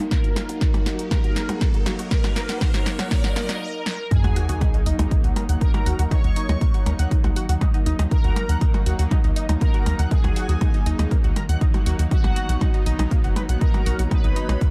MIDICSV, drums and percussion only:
0, 0, Header, 1, 3, 480
1, 0, Start_track
1, 0, Key_signature, -6, "minor"
1, 0, Tempo, 500000
1, 108, Time_signature, 4, 2, 24, 8
1, 14117, End_track
2, 0, Start_track
2, 0, Title_t, "Percussion blips"
2, 348, Note_on_c, 9, 64, 90
2, 444, Note_off_c, 9, 64, 0
2, 711, Note_on_c, 9, 64, 88
2, 807, Note_off_c, 9, 64, 0
2, 1068, Note_on_c, 9, 64, 90
2, 1164, Note_off_c, 9, 64, 0
2, 1431, Note_on_c, 9, 64, 94
2, 1527, Note_off_c, 9, 64, 0
2, 1787, Note_on_c, 9, 64, 88
2, 1883, Note_off_c, 9, 64, 0
2, 2152, Note_on_c, 9, 64, 88
2, 2248, Note_off_c, 9, 64, 0
2, 2508, Note_on_c, 9, 64, 85
2, 2604, Note_off_c, 9, 64, 0
2, 2871, Note_on_c, 9, 64, 87
2, 2967, Note_off_c, 9, 64, 0
2, 3227, Note_on_c, 9, 64, 89
2, 3323, Note_off_c, 9, 64, 0
2, 4072, Note_on_c, 9, 64, 98
2, 4168, Note_off_c, 9, 64, 0
2, 4429, Note_on_c, 9, 64, 99
2, 4525, Note_off_c, 9, 64, 0
2, 4792, Note_on_c, 9, 64, 96
2, 4888, Note_off_c, 9, 64, 0
2, 5148, Note_on_c, 9, 64, 98
2, 5244, Note_off_c, 9, 64, 0
2, 5512, Note_on_c, 9, 64, 100
2, 5608, Note_off_c, 9, 64, 0
2, 5869, Note_on_c, 9, 64, 95
2, 5965, Note_off_c, 9, 64, 0
2, 6232, Note_on_c, 9, 64, 91
2, 6328, Note_off_c, 9, 64, 0
2, 6589, Note_on_c, 9, 64, 94
2, 6685, Note_off_c, 9, 64, 0
2, 6952, Note_on_c, 9, 64, 92
2, 7048, Note_off_c, 9, 64, 0
2, 7309, Note_on_c, 9, 64, 91
2, 7405, Note_off_c, 9, 64, 0
2, 7672, Note_on_c, 9, 64, 93
2, 7768, Note_off_c, 9, 64, 0
2, 8029, Note_on_c, 9, 64, 87
2, 8125, Note_off_c, 9, 64, 0
2, 8393, Note_on_c, 9, 64, 92
2, 8489, Note_off_c, 9, 64, 0
2, 8748, Note_on_c, 9, 64, 92
2, 8844, Note_off_c, 9, 64, 0
2, 9112, Note_on_c, 9, 64, 91
2, 9208, Note_off_c, 9, 64, 0
2, 9468, Note_on_c, 9, 64, 91
2, 9564, Note_off_c, 9, 64, 0
2, 9832, Note_on_c, 9, 64, 88
2, 9928, Note_off_c, 9, 64, 0
2, 10188, Note_on_c, 9, 64, 88
2, 10284, Note_off_c, 9, 64, 0
2, 10552, Note_on_c, 9, 64, 87
2, 10648, Note_off_c, 9, 64, 0
2, 10909, Note_on_c, 9, 64, 87
2, 11005, Note_off_c, 9, 64, 0
2, 11272, Note_on_c, 9, 64, 90
2, 11368, Note_off_c, 9, 64, 0
2, 11752, Note_on_c, 9, 64, 93
2, 11848, Note_off_c, 9, 64, 0
2, 12108, Note_on_c, 9, 64, 91
2, 12204, Note_off_c, 9, 64, 0
2, 12472, Note_on_c, 9, 64, 93
2, 12568, Note_off_c, 9, 64, 0
2, 12828, Note_on_c, 9, 64, 91
2, 12924, Note_off_c, 9, 64, 0
2, 13192, Note_on_c, 9, 64, 86
2, 13288, Note_off_c, 9, 64, 0
2, 13548, Note_on_c, 9, 64, 91
2, 13644, Note_off_c, 9, 64, 0
2, 13912, Note_on_c, 9, 64, 93
2, 14008, Note_off_c, 9, 64, 0
2, 14117, End_track
3, 0, Start_track
3, 0, Title_t, "Drums"
3, 108, Note_on_c, 9, 36, 122
3, 108, Note_on_c, 9, 38, 75
3, 108, Note_on_c, 9, 42, 57
3, 204, Note_off_c, 9, 36, 0
3, 204, Note_off_c, 9, 38, 0
3, 204, Note_off_c, 9, 42, 0
3, 232, Note_on_c, 9, 42, 35
3, 328, Note_off_c, 9, 42, 0
3, 348, Note_on_c, 9, 38, 69
3, 348, Note_on_c, 9, 46, 102
3, 444, Note_off_c, 9, 38, 0
3, 444, Note_off_c, 9, 46, 0
3, 472, Note_on_c, 9, 42, 66
3, 568, Note_off_c, 9, 42, 0
3, 588, Note_on_c, 9, 36, 124
3, 588, Note_on_c, 9, 38, 77
3, 588, Note_on_c, 9, 42, 55
3, 684, Note_off_c, 9, 36, 0
3, 684, Note_off_c, 9, 38, 0
3, 684, Note_off_c, 9, 42, 0
3, 711, Note_on_c, 9, 42, 34
3, 807, Note_off_c, 9, 42, 0
3, 828, Note_on_c, 9, 38, 80
3, 828, Note_on_c, 9, 46, 92
3, 924, Note_off_c, 9, 38, 0
3, 924, Note_off_c, 9, 46, 0
3, 951, Note_on_c, 9, 42, 66
3, 1047, Note_off_c, 9, 42, 0
3, 1068, Note_on_c, 9, 36, 118
3, 1068, Note_on_c, 9, 38, 83
3, 1068, Note_on_c, 9, 42, 59
3, 1164, Note_off_c, 9, 36, 0
3, 1164, Note_off_c, 9, 38, 0
3, 1164, Note_off_c, 9, 42, 0
3, 1191, Note_on_c, 9, 42, 34
3, 1287, Note_off_c, 9, 42, 0
3, 1307, Note_on_c, 9, 38, 83
3, 1307, Note_on_c, 9, 46, 104
3, 1403, Note_off_c, 9, 38, 0
3, 1403, Note_off_c, 9, 46, 0
3, 1431, Note_on_c, 9, 42, 69
3, 1527, Note_off_c, 9, 42, 0
3, 1548, Note_on_c, 9, 36, 126
3, 1548, Note_on_c, 9, 38, 87
3, 1548, Note_on_c, 9, 42, 55
3, 1644, Note_off_c, 9, 36, 0
3, 1644, Note_off_c, 9, 38, 0
3, 1644, Note_off_c, 9, 42, 0
3, 1671, Note_on_c, 9, 42, 35
3, 1767, Note_off_c, 9, 42, 0
3, 1787, Note_on_c, 9, 38, 90
3, 1787, Note_on_c, 9, 46, 99
3, 1883, Note_off_c, 9, 38, 0
3, 1883, Note_off_c, 9, 46, 0
3, 1911, Note_on_c, 9, 42, 67
3, 2007, Note_off_c, 9, 42, 0
3, 2028, Note_on_c, 9, 36, 122
3, 2028, Note_on_c, 9, 38, 90
3, 2028, Note_on_c, 9, 42, 53
3, 2124, Note_off_c, 9, 36, 0
3, 2124, Note_off_c, 9, 38, 0
3, 2124, Note_off_c, 9, 42, 0
3, 2152, Note_on_c, 9, 38, 84
3, 2152, Note_on_c, 9, 42, 32
3, 2248, Note_off_c, 9, 38, 0
3, 2248, Note_off_c, 9, 42, 0
3, 2267, Note_on_c, 9, 38, 91
3, 2267, Note_on_c, 9, 46, 110
3, 2363, Note_off_c, 9, 38, 0
3, 2363, Note_off_c, 9, 46, 0
3, 2391, Note_on_c, 9, 38, 81
3, 2391, Note_on_c, 9, 42, 66
3, 2487, Note_off_c, 9, 38, 0
3, 2487, Note_off_c, 9, 42, 0
3, 2508, Note_on_c, 9, 36, 121
3, 2508, Note_on_c, 9, 38, 95
3, 2508, Note_on_c, 9, 42, 56
3, 2604, Note_off_c, 9, 36, 0
3, 2604, Note_off_c, 9, 38, 0
3, 2604, Note_off_c, 9, 42, 0
3, 2631, Note_on_c, 9, 38, 87
3, 2631, Note_on_c, 9, 42, 34
3, 2727, Note_off_c, 9, 38, 0
3, 2727, Note_off_c, 9, 42, 0
3, 2747, Note_on_c, 9, 38, 99
3, 2747, Note_on_c, 9, 46, 97
3, 2843, Note_off_c, 9, 38, 0
3, 2843, Note_off_c, 9, 46, 0
3, 2871, Note_on_c, 9, 38, 84
3, 2871, Note_on_c, 9, 42, 68
3, 2967, Note_off_c, 9, 38, 0
3, 2967, Note_off_c, 9, 42, 0
3, 2987, Note_on_c, 9, 38, 104
3, 2987, Note_on_c, 9, 42, 56
3, 2988, Note_on_c, 9, 36, 119
3, 3083, Note_off_c, 9, 38, 0
3, 3083, Note_off_c, 9, 42, 0
3, 3084, Note_off_c, 9, 36, 0
3, 3111, Note_on_c, 9, 38, 90
3, 3111, Note_on_c, 9, 42, 32
3, 3207, Note_off_c, 9, 38, 0
3, 3207, Note_off_c, 9, 42, 0
3, 3227, Note_on_c, 9, 38, 105
3, 3227, Note_on_c, 9, 46, 114
3, 3323, Note_off_c, 9, 38, 0
3, 3323, Note_off_c, 9, 46, 0
3, 3350, Note_on_c, 9, 38, 98
3, 3350, Note_on_c, 9, 42, 70
3, 3446, Note_off_c, 9, 38, 0
3, 3446, Note_off_c, 9, 42, 0
3, 3707, Note_on_c, 9, 38, 99
3, 3803, Note_off_c, 9, 38, 0
3, 3948, Note_on_c, 9, 36, 123
3, 3948, Note_on_c, 9, 42, 58
3, 4044, Note_off_c, 9, 36, 0
3, 4044, Note_off_c, 9, 42, 0
3, 4072, Note_on_c, 9, 42, 34
3, 4168, Note_off_c, 9, 42, 0
3, 4188, Note_on_c, 9, 46, 101
3, 4284, Note_off_c, 9, 46, 0
3, 4312, Note_on_c, 9, 42, 73
3, 4408, Note_off_c, 9, 42, 0
3, 4428, Note_on_c, 9, 36, 116
3, 4429, Note_on_c, 9, 42, 58
3, 4524, Note_off_c, 9, 36, 0
3, 4525, Note_off_c, 9, 42, 0
3, 4552, Note_on_c, 9, 42, 36
3, 4648, Note_off_c, 9, 42, 0
3, 4668, Note_on_c, 9, 46, 102
3, 4764, Note_off_c, 9, 46, 0
3, 4792, Note_on_c, 9, 42, 71
3, 4888, Note_off_c, 9, 42, 0
3, 4908, Note_on_c, 9, 36, 123
3, 4909, Note_on_c, 9, 42, 60
3, 5004, Note_off_c, 9, 36, 0
3, 5005, Note_off_c, 9, 42, 0
3, 5032, Note_on_c, 9, 42, 36
3, 5128, Note_off_c, 9, 42, 0
3, 5148, Note_on_c, 9, 46, 107
3, 5244, Note_off_c, 9, 46, 0
3, 5272, Note_on_c, 9, 42, 76
3, 5368, Note_off_c, 9, 42, 0
3, 5388, Note_on_c, 9, 36, 118
3, 5389, Note_on_c, 9, 42, 57
3, 5484, Note_off_c, 9, 36, 0
3, 5485, Note_off_c, 9, 42, 0
3, 5512, Note_on_c, 9, 42, 34
3, 5608, Note_off_c, 9, 42, 0
3, 5629, Note_on_c, 9, 46, 107
3, 5725, Note_off_c, 9, 46, 0
3, 5752, Note_on_c, 9, 42, 68
3, 5848, Note_off_c, 9, 42, 0
3, 5869, Note_on_c, 9, 36, 124
3, 5869, Note_on_c, 9, 42, 58
3, 5965, Note_off_c, 9, 36, 0
3, 5965, Note_off_c, 9, 42, 0
3, 5993, Note_on_c, 9, 42, 34
3, 6089, Note_off_c, 9, 42, 0
3, 6109, Note_on_c, 9, 46, 105
3, 6205, Note_off_c, 9, 46, 0
3, 6232, Note_on_c, 9, 46, 65
3, 6328, Note_off_c, 9, 46, 0
3, 6349, Note_on_c, 9, 36, 117
3, 6349, Note_on_c, 9, 42, 60
3, 6445, Note_off_c, 9, 36, 0
3, 6445, Note_off_c, 9, 42, 0
3, 6472, Note_on_c, 9, 42, 36
3, 6568, Note_off_c, 9, 42, 0
3, 6589, Note_on_c, 9, 46, 112
3, 6685, Note_off_c, 9, 46, 0
3, 6712, Note_on_c, 9, 42, 74
3, 6808, Note_off_c, 9, 42, 0
3, 6829, Note_on_c, 9, 36, 115
3, 6829, Note_on_c, 9, 42, 58
3, 6925, Note_off_c, 9, 36, 0
3, 6925, Note_off_c, 9, 42, 0
3, 6952, Note_on_c, 9, 42, 36
3, 7048, Note_off_c, 9, 42, 0
3, 7069, Note_on_c, 9, 46, 110
3, 7165, Note_off_c, 9, 46, 0
3, 7193, Note_on_c, 9, 42, 77
3, 7289, Note_off_c, 9, 42, 0
3, 7309, Note_on_c, 9, 36, 121
3, 7309, Note_on_c, 9, 42, 56
3, 7405, Note_off_c, 9, 36, 0
3, 7405, Note_off_c, 9, 42, 0
3, 7432, Note_on_c, 9, 42, 36
3, 7528, Note_off_c, 9, 42, 0
3, 7548, Note_on_c, 9, 46, 114
3, 7644, Note_off_c, 9, 46, 0
3, 7672, Note_on_c, 9, 42, 71
3, 7768, Note_off_c, 9, 42, 0
3, 7789, Note_on_c, 9, 36, 127
3, 7789, Note_on_c, 9, 42, 58
3, 7885, Note_off_c, 9, 36, 0
3, 7885, Note_off_c, 9, 42, 0
3, 7912, Note_on_c, 9, 42, 35
3, 8008, Note_off_c, 9, 42, 0
3, 8029, Note_on_c, 9, 46, 107
3, 8125, Note_off_c, 9, 46, 0
3, 8152, Note_on_c, 9, 42, 69
3, 8248, Note_off_c, 9, 42, 0
3, 8269, Note_on_c, 9, 36, 122
3, 8269, Note_on_c, 9, 42, 58
3, 8365, Note_off_c, 9, 36, 0
3, 8365, Note_off_c, 9, 42, 0
3, 8393, Note_on_c, 9, 42, 35
3, 8489, Note_off_c, 9, 42, 0
3, 8509, Note_on_c, 9, 46, 112
3, 8605, Note_off_c, 9, 46, 0
3, 8632, Note_on_c, 9, 42, 69
3, 8728, Note_off_c, 9, 42, 0
3, 8748, Note_on_c, 9, 42, 59
3, 8749, Note_on_c, 9, 36, 127
3, 8844, Note_off_c, 9, 42, 0
3, 8845, Note_off_c, 9, 36, 0
3, 8872, Note_on_c, 9, 42, 33
3, 8968, Note_off_c, 9, 42, 0
3, 8988, Note_on_c, 9, 46, 115
3, 9084, Note_off_c, 9, 46, 0
3, 9112, Note_on_c, 9, 42, 73
3, 9208, Note_off_c, 9, 42, 0
3, 9228, Note_on_c, 9, 42, 57
3, 9229, Note_on_c, 9, 36, 127
3, 9324, Note_off_c, 9, 42, 0
3, 9325, Note_off_c, 9, 36, 0
3, 9352, Note_on_c, 9, 42, 36
3, 9448, Note_off_c, 9, 42, 0
3, 9468, Note_on_c, 9, 46, 114
3, 9564, Note_off_c, 9, 46, 0
3, 9592, Note_on_c, 9, 42, 67
3, 9688, Note_off_c, 9, 42, 0
3, 9708, Note_on_c, 9, 36, 127
3, 9708, Note_on_c, 9, 42, 56
3, 9804, Note_off_c, 9, 36, 0
3, 9804, Note_off_c, 9, 42, 0
3, 9832, Note_on_c, 9, 42, 33
3, 9928, Note_off_c, 9, 42, 0
3, 9948, Note_on_c, 9, 46, 105
3, 10044, Note_off_c, 9, 46, 0
3, 10071, Note_on_c, 9, 46, 65
3, 10167, Note_off_c, 9, 46, 0
3, 10188, Note_on_c, 9, 42, 57
3, 10189, Note_on_c, 9, 36, 119
3, 10284, Note_off_c, 9, 42, 0
3, 10285, Note_off_c, 9, 36, 0
3, 10312, Note_on_c, 9, 42, 34
3, 10408, Note_off_c, 9, 42, 0
3, 10428, Note_on_c, 9, 46, 107
3, 10524, Note_off_c, 9, 46, 0
3, 10552, Note_on_c, 9, 42, 69
3, 10648, Note_off_c, 9, 42, 0
3, 10668, Note_on_c, 9, 36, 122
3, 10668, Note_on_c, 9, 42, 57
3, 10764, Note_off_c, 9, 36, 0
3, 10764, Note_off_c, 9, 42, 0
3, 10792, Note_on_c, 9, 42, 33
3, 10888, Note_off_c, 9, 42, 0
3, 10909, Note_on_c, 9, 46, 111
3, 11005, Note_off_c, 9, 46, 0
3, 11032, Note_on_c, 9, 42, 70
3, 11128, Note_off_c, 9, 42, 0
3, 11149, Note_on_c, 9, 36, 124
3, 11149, Note_on_c, 9, 42, 53
3, 11245, Note_off_c, 9, 36, 0
3, 11245, Note_off_c, 9, 42, 0
3, 11272, Note_on_c, 9, 42, 34
3, 11368, Note_off_c, 9, 42, 0
3, 11389, Note_on_c, 9, 46, 119
3, 11485, Note_off_c, 9, 46, 0
3, 11513, Note_on_c, 9, 42, 64
3, 11609, Note_off_c, 9, 42, 0
3, 11629, Note_on_c, 9, 36, 122
3, 11629, Note_on_c, 9, 42, 56
3, 11725, Note_off_c, 9, 36, 0
3, 11725, Note_off_c, 9, 42, 0
3, 11752, Note_on_c, 9, 42, 32
3, 11848, Note_off_c, 9, 42, 0
3, 11868, Note_on_c, 9, 46, 105
3, 11964, Note_off_c, 9, 46, 0
3, 11992, Note_on_c, 9, 42, 65
3, 12088, Note_off_c, 9, 42, 0
3, 12108, Note_on_c, 9, 42, 56
3, 12109, Note_on_c, 9, 36, 117
3, 12204, Note_off_c, 9, 42, 0
3, 12205, Note_off_c, 9, 36, 0
3, 12232, Note_on_c, 9, 42, 33
3, 12328, Note_off_c, 9, 42, 0
3, 12348, Note_on_c, 9, 46, 106
3, 12444, Note_off_c, 9, 46, 0
3, 12472, Note_on_c, 9, 42, 66
3, 12568, Note_off_c, 9, 42, 0
3, 12589, Note_on_c, 9, 36, 115
3, 12589, Note_on_c, 9, 42, 58
3, 12685, Note_off_c, 9, 36, 0
3, 12685, Note_off_c, 9, 42, 0
3, 12713, Note_on_c, 9, 42, 32
3, 12809, Note_off_c, 9, 42, 0
3, 12828, Note_on_c, 9, 46, 104
3, 12924, Note_off_c, 9, 46, 0
3, 12952, Note_on_c, 9, 42, 68
3, 13048, Note_off_c, 9, 42, 0
3, 13069, Note_on_c, 9, 36, 123
3, 13069, Note_on_c, 9, 42, 52
3, 13165, Note_off_c, 9, 36, 0
3, 13165, Note_off_c, 9, 42, 0
3, 13192, Note_on_c, 9, 42, 33
3, 13288, Note_off_c, 9, 42, 0
3, 13309, Note_on_c, 9, 46, 114
3, 13405, Note_off_c, 9, 46, 0
3, 13432, Note_on_c, 9, 42, 67
3, 13528, Note_off_c, 9, 42, 0
3, 13548, Note_on_c, 9, 42, 55
3, 13549, Note_on_c, 9, 36, 111
3, 13644, Note_off_c, 9, 42, 0
3, 13645, Note_off_c, 9, 36, 0
3, 13672, Note_on_c, 9, 42, 32
3, 13768, Note_off_c, 9, 42, 0
3, 13788, Note_on_c, 9, 46, 97
3, 13884, Note_off_c, 9, 46, 0
3, 13912, Note_on_c, 9, 46, 61
3, 14008, Note_off_c, 9, 46, 0
3, 14028, Note_on_c, 9, 42, 54
3, 14029, Note_on_c, 9, 36, 112
3, 14117, Note_off_c, 9, 36, 0
3, 14117, Note_off_c, 9, 42, 0
3, 14117, End_track
0, 0, End_of_file